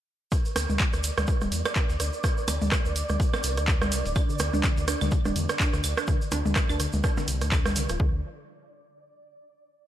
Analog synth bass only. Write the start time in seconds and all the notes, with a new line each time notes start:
0.56 D2
0.69 D2
0.93 D2
1.18 D2
1.42 D1
1.52 E2
1.89 D2
2.00 D2
2.48 D2
2.62 D2
2.85 D2
3.09 D2
3.44 C2
3.57 D2
3.92 C2
4.05 D1
4.40 D2
4.53 D2
4.77 D2
5.01 D2
5.25 D1
5.36 E2
5.73 D2
5.84 D2
6.32 D2
6.45 D2
6.70 D2
6.93 D2
7.28 C2
7.41 D2
7.76 C2
7.90 D1
8.00 D2